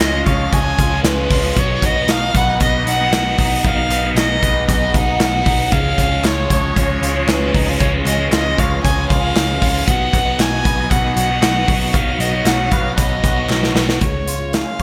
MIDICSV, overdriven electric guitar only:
0, 0, Header, 1, 2, 480
1, 0, Start_track
1, 0, Tempo, 519031
1, 1448, Time_signature, 4, 2, 24, 8
1, 13712, End_track
2, 0, Start_track
2, 0, Title_t, "Overdriven electric guitar"
2, 0, Program_c, 0, 29
2, 0, Note_on_c, 0, 53, 42
2, 0, Note_on_c, 0, 56, 44
2, 0, Note_on_c, 0, 61, 61
2, 229, Note_off_c, 0, 53, 0
2, 230, Note_on_c, 0, 49, 59
2, 236, Note_off_c, 0, 56, 0
2, 240, Note_on_c, 0, 53, 66
2, 241, Note_off_c, 0, 61, 0
2, 247, Note_on_c, 0, 56, 59
2, 254, Note_on_c, 0, 61, 70
2, 470, Note_off_c, 0, 49, 0
2, 478, Note_off_c, 0, 53, 0
2, 481, Note_on_c, 0, 49, 62
2, 483, Note_off_c, 0, 56, 0
2, 489, Note_on_c, 0, 53, 65
2, 490, Note_off_c, 0, 61, 0
2, 494, Note_on_c, 0, 56, 65
2, 503, Note_on_c, 0, 61, 64
2, 819, Note_off_c, 0, 61, 0
2, 830, Note_on_c, 0, 61, 53
2, 832, Note_off_c, 0, 56, 0
2, 843, Note_on_c, 0, 56, 49
2, 844, Note_off_c, 0, 49, 0
2, 845, Note_off_c, 0, 53, 0
2, 856, Note_on_c, 0, 53, 43
2, 1195, Note_on_c, 0, 49, 59
2, 1199, Note_off_c, 0, 61, 0
2, 1200, Note_off_c, 0, 56, 0
2, 1202, Note_off_c, 0, 53, 0
2, 1211, Note_on_c, 0, 56, 75
2, 1213, Note_on_c, 0, 53, 69
2, 1223, Note_on_c, 0, 61, 69
2, 1433, Note_off_c, 0, 49, 0
2, 1437, Note_on_c, 0, 47, 64
2, 1442, Note_off_c, 0, 53, 0
2, 1445, Note_on_c, 0, 54, 71
2, 1447, Note_off_c, 0, 56, 0
2, 1451, Note_on_c, 0, 59, 73
2, 1456, Note_off_c, 0, 61, 0
2, 1460, Note_on_c, 0, 63, 73
2, 1801, Note_off_c, 0, 63, 0
2, 1803, Note_off_c, 0, 47, 0
2, 1807, Note_off_c, 0, 54, 0
2, 1810, Note_off_c, 0, 59, 0
2, 1812, Note_on_c, 0, 63, 57
2, 1821, Note_on_c, 0, 59, 57
2, 1835, Note_on_c, 0, 54, 45
2, 2169, Note_on_c, 0, 47, 60
2, 2171, Note_off_c, 0, 63, 0
2, 2174, Note_off_c, 0, 54, 0
2, 2175, Note_off_c, 0, 59, 0
2, 2185, Note_on_c, 0, 54, 65
2, 2190, Note_on_c, 0, 59, 59
2, 2193, Note_on_c, 0, 63, 67
2, 2395, Note_off_c, 0, 47, 0
2, 2406, Note_on_c, 0, 47, 62
2, 2407, Note_off_c, 0, 54, 0
2, 2415, Note_off_c, 0, 59, 0
2, 2419, Note_on_c, 0, 54, 62
2, 2421, Note_off_c, 0, 63, 0
2, 2426, Note_on_c, 0, 59, 62
2, 2435, Note_on_c, 0, 63, 68
2, 2754, Note_off_c, 0, 63, 0
2, 2765, Note_on_c, 0, 63, 57
2, 2767, Note_off_c, 0, 59, 0
2, 2768, Note_off_c, 0, 47, 0
2, 2774, Note_off_c, 0, 54, 0
2, 2778, Note_on_c, 0, 59, 53
2, 2790, Note_on_c, 0, 54, 40
2, 3122, Note_off_c, 0, 54, 0
2, 3128, Note_off_c, 0, 63, 0
2, 3128, Note_on_c, 0, 47, 62
2, 3133, Note_on_c, 0, 54, 71
2, 3135, Note_off_c, 0, 59, 0
2, 3147, Note_on_c, 0, 59, 61
2, 3147, Note_on_c, 0, 63, 77
2, 3359, Note_off_c, 0, 47, 0
2, 3369, Note_off_c, 0, 54, 0
2, 3371, Note_on_c, 0, 47, 62
2, 3379, Note_off_c, 0, 59, 0
2, 3379, Note_off_c, 0, 63, 0
2, 3380, Note_on_c, 0, 54, 67
2, 3389, Note_on_c, 0, 59, 71
2, 3396, Note_on_c, 0, 63, 67
2, 3721, Note_off_c, 0, 63, 0
2, 3730, Note_off_c, 0, 59, 0
2, 3731, Note_off_c, 0, 47, 0
2, 3732, Note_on_c, 0, 63, 52
2, 3736, Note_off_c, 0, 54, 0
2, 3741, Note_on_c, 0, 59, 50
2, 3755, Note_on_c, 0, 54, 44
2, 4082, Note_off_c, 0, 54, 0
2, 4084, Note_on_c, 0, 47, 58
2, 4086, Note_off_c, 0, 59, 0
2, 4092, Note_off_c, 0, 63, 0
2, 4093, Note_on_c, 0, 54, 55
2, 4097, Note_on_c, 0, 59, 63
2, 4109, Note_on_c, 0, 63, 67
2, 4300, Note_off_c, 0, 47, 0
2, 4311, Note_on_c, 0, 47, 60
2, 4312, Note_off_c, 0, 54, 0
2, 4322, Note_off_c, 0, 59, 0
2, 4323, Note_on_c, 0, 54, 65
2, 4328, Note_off_c, 0, 63, 0
2, 4333, Note_on_c, 0, 59, 57
2, 4339, Note_on_c, 0, 63, 69
2, 4671, Note_off_c, 0, 63, 0
2, 4681, Note_off_c, 0, 59, 0
2, 4682, Note_off_c, 0, 47, 0
2, 4682, Note_on_c, 0, 63, 49
2, 4688, Note_off_c, 0, 54, 0
2, 4693, Note_on_c, 0, 59, 52
2, 4702, Note_on_c, 0, 54, 43
2, 5031, Note_on_c, 0, 47, 60
2, 5032, Note_off_c, 0, 54, 0
2, 5040, Note_off_c, 0, 59, 0
2, 5043, Note_on_c, 0, 54, 60
2, 5047, Note_off_c, 0, 63, 0
2, 5051, Note_on_c, 0, 59, 64
2, 5058, Note_on_c, 0, 63, 64
2, 5265, Note_off_c, 0, 47, 0
2, 5268, Note_on_c, 0, 49, 63
2, 5274, Note_off_c, 0, 54, 0
2, 5278, Note_on_c, 0, 53, 62
2, 5282, Note_off_c, 0, 59, 0
2, 5286, Note_on_c, 0, 56, 64
2, 5293, Note_off_c, 0, 63, 0
2, 5296, Note_on_c, 0, 61, 67
2, 5626, Note_off_c, 0, 61, 0
2, 5637, Note_on_c, 0, 61, 56
2, 5640, Note_off_c, 0, 49, 0
2, 5642, Note_off_c, 0, 56, 0
2, 5645, Note_off_c, 0, 53, 0
2, 5654, Note_on_c, 0, 56, 47
2, 5661, Note_on_c, 0, 53, 48
2, 5996, Note_off_c, 0, 53, 0
2, 5997, Note_on_c, 0, 49, 64
2, 6005, Note_off_c, 0, 56, 0
2, 6005, Note_off_c, 0, 61, 0
2, 6007, Note_on_c, 0, 53, 66
2, 6016, Note_on_c, 0, 56, 66
2, 6022, Note_on_c, 0, 61, 59
2, 6227, Note_off_c, 0, 49, 0
2, 6238, Note_off_c, 0, 53, 0
2, 6238, Note_on_c, 0, 49, 57
2, 6247, Note_off_c, 0, 56, 0
2, 6249, Note_on_c, 0, 53, 65
2, 6251, Note_off_c, 0, 61, 0
2, 6258, Note_on_c, 0, 56, 66
2, 6262, Note_on_c, 0, 61, 67
2, 6597, Note_off_c, 0, 61, 0
2, 6605, Note_off_c, 0, 49, 0
2, 6608, Note_off_c, 0, 56, 0
2, 6608, Note_on_c, 0, 61, 57
2, 6611, Note_off_c, 0, 53, 0
2, 6619, Note_on_c, 0, 56, 52
2, 6634, Note_on_c, 0, 53, 41
2, 6963, Note_off_c, 0, 53, 0
2, 6966, Note_on_c, 0, 49, 60
2, 6970, Note_off_c, 0, 56, 0
2, 6970, Note_off_c, 0, 61, 0
2, 6975, Note_on_c, 0, 53, 70
2, 6981, Note_on_c, 0, 56, 69
2, 6989, Note_on_c, 0, 61, 69
2, 7201, Note_off_c, 0, 49, 0
2, 7207, Note_off_c, 0, 53, 0
2, 7212, Note_on_c, 0, 49, 64
2, 7216, Note_off_c, 0, 56, 0
2, 7219, Note_on_c, 0, 53, 70
2, 7220, Note_off_c, 0, 61, 0
2, 7226, Note_on_c, 0, 56, 66
2, 7231, Note_on_c, 0, 61, 75
2, 7563, Note_off_c, 0, 61, 0
2, 7569, Note_off_c, 0, 56, 0
2, 7572, Note_off_c, 0, 49, 0
2, 7574, Note_on_c, 0, 61, 50
2, 7575, Note_off_c, 0, 53, 0
2, 7580, Note_on_c, 0, 56, 51
2, 7594, Note_on_c, 0, 53, 45
2, 7924, Note_off_c, 0, 53, 0
2, 7928, Note_on_c, 0, 49, 55
2, 7933, Note_off_c, 0, 56, 0
2, 7933, Note_off_c, 0, 61, 0
2, 7935, Note_on_c, 0, 53, 60
2, 7944, Note_on_c, 0, 56, 63
2, 7952, Note_on_c, 0, 61, 64
2, 8156, Note_off_c, 0, 49, 0
2, 8167, Note_off_c, 0, 53, 0
2, 8167, Note_on_c, 0, 49, 54
2, 8175, Note_off_c, 0, 56, 0
2, 8178, Note_on_c, 0, 53, 64
2, 8181, Note_off_c, 0, 61, 0
2, 8186, Note_on_c, 0, 56, 66
2, 8193, Note_on_c, 0, 61, 64
2, 8507, Note_off_c, 0, 61, 0
2, 8518, Note_on_c, 0, 61, 50
2, 8526, Note_off_c, 0, 56, 0
2, 8529, Note_off_c, 0, 49, 0
2, 8534, Note_off_c, 0, 53, 0
2, 8537, Note_on_c, 0, 56, 50
2, 8544, Note_on_c, 0, 53, 43
2, 8884, Note_off_c, 0, 61, 0
2, 8889, Note_off_c, 0, 53, 0
2, 8891, Note_on_c, 0, 49, 63
2, 8893, Note_off_c, 0, 56, 0
2, 8900, Note_on_c, 0, 53, 62
2, 8904, Note_on_c, 0, 56, 61
2, 8915, Note_on_c, 0, 61, 73
2, 9130, Note_off_c, 0, 49, 0
2, 9135, Note_off_c, 0, 53, 0
2, 9135, Note_on_c, 0, 47, 65
2, 9137, Note_off_c, 0, 56, 0
2, 9141, Note_on_c, 0, 54, 64
2, 9142, Note_off_c, 0, 61, 0
2, 9148, Note_on_c, 0, 59, 75
2, 9157, Note_on_c, 0, 63, 75
2, 9475, Note_off_c, 0, 63, 0
2, 9486, Note_on_c, 0, 63, 60
2, 9488, Note_off_c, 0, 59, 0
2, 9492, Note_off_c, 0, 47, 0
2, 9495, Note_off_c, 0, 54, 0
2, 9499, Note_on_c, 0, 59, 52
2, 9507, Note_on_c, 0, 54, 48
2, 9847, Note_off_c, 0, 63, 0
2, 9853, Note_off_c, 0, 59, 0
2, 9854, Note_off_c, 0, 54, 0
2, 9858, Note_on_c, 0, 47, 64
2, 9865, Note_on_c, 0, 54, 68
2, 9869, Note_on_c, 0, 59, 66
2, 9877, Note_on_c, 0, 63, 70
2, 10077, Note_off_c, 0, 47, 0
2, 10085, Note_off_c, 0, 54, 0
2, 10088, Note_on_c, 0, 47, 59
2, 10092, Note_off_c, 0, 59, 0
2, 10096, Note_on_c, 0, 54, 69
2, 10100, Note_off_c, 0, 63, 0
2, 10103, Note_on_c, 0, 59, 72
2, 10111, Note_on_c, 0, 63, 65
2, 10425, Note_off_c, 0, 63, 0
2, 10436, Note_on_c, 0, 63, 58
2, 10440, Note_off_c, 0, 59, 0
2, 10447, Note_off_c, 0, 47, 0
2, 10448, Note_off_c, 0, 54, 0
2, 10451, Note_on_c, 0, 59, 50
2, 10459, Note_on_c, 0, 54, 41
2, 10792, Note_off_c, 0, 54, 0
2, 10798, Note_off_c, 0, 59, 0
2, 10798, Note_on_c, 0, 47, 70
2, 10801, Note_off_c, 0, 63, 0
2, 10803, Note_on_c, 0, 54, 70
2, 10809, Note_on_c, 0, 59, 71
2, 10820, Note_on_c, 0, 63, 64
2, 11030, Note_off_c, 0, 47, 0
2, 11038, Note_off_c, 0, 54, 0
2, 11041, Note_on_c, 0, 47, 68
2, 11047, Note_off_c, 0, 59, 0
2, 11049, Note_on_c, 0, 54, 70
2, 11053, Note_off_c, 0, 63, 0
2, 11057, Note_on_c, 0, 59, 65
2, 11066, Note_on_c, 0, 63, 72
2, 11387, Note_off_c, 0, 63, 0
2, 11398, Note_on_c, 0, 63, 55
2, 11399, Note_off_c, 0, 59, 0
2, 11403, Note_off_c, 0, 47, 0
2, 11407, Note_off_c, 0, 54, 0
2, 11410, Note_on_c, 0, 59, 46
2, 11422, Note_on_c, 0, 54, 46
2, 11741, Note_off_c, 0, 54, 0
2, 11746, Note_on_c, 0, 47, 63
2, 11747, Note_off_c, 0, 59, 0
2, 11750, Note_off_c, 0, 63, 0
2, 11752, Note_on_c, 0, 54, 67
2, 11758, Note_on_c, 0, 59, 62
2, 11762, Note_on_c, 0, 63, 65
2, 11977, Note_off_c, 0, 47, 0
2, 11985, Note_off_c, 0, 54, 0
2, 11988, Note_on_c, 0, 47, 56
2, 11989, Note_off_c, 0, 59, 0
2, 11996, Note_on_c, 0, 54, 65
2, 12000, Note_off_c, 0, 63, 0
2, 12000, Note_on_c, 0, 59, 64
2, 12011, Note_on_c, 0, 63, 59
2, 12329, Note_off_c, 0, 63, 0
2, 12340, Note_on_c, 0, 63, 57
2, 12347, Note_off_c, 0, 59, 0
2, 12353, Note_off_c, 0, 54, 0
2, 12357, Note_off_c, 0, 47, 0
2, 12358, Note_on_c, 0, 59, 49
2, 12365, Note_on_c, 0, 54, 46
2, 12705, Note_on_c, 0, 47, 72
2, 12706, Note_off_c, 0, 54, 0
2, 12712, Note_off_c, 0, 63, 0
2, 12717, Note_on_c, 0, 54, 69
2, 12718, Note_off_c, 0, 59, 0
2, 12728, Note_on_c, 0, 63, 83
2, 12729, Note_on_c, 0, 59, 71
2, 12955, Note_off_c, 0, 47, 0
2, 12961, Note_off_c, 0, 54, 0
2, 12967, Note_off_c, 0, 59, 0
2, 12967, Note_off_c, 0, 63, 0
2, 13712, End_track
0, 0, End_of_file